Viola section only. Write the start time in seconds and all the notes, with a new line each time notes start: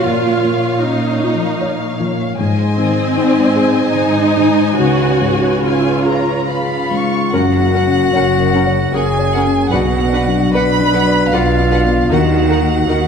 0.02 F4
0.82 D#4
2.76 C4
3.95 D#4
4.78 F#4
5.64 F4
7.33 C#4 A#4
7.74 C#4 A#4
8.15 C#4 A#4
8.54 C#4 A#4
8.94 C#4 A#4
9.35 C#4 A#4
9.72 D4 B4
10.13 D4 B4
10.53 D4 B4
10.93 D4 B4
11.33 D4 B4
11.71 D4 B4
12.10 D#4 A#4
12.50 D#4 A#4
12.88 D#4 A#4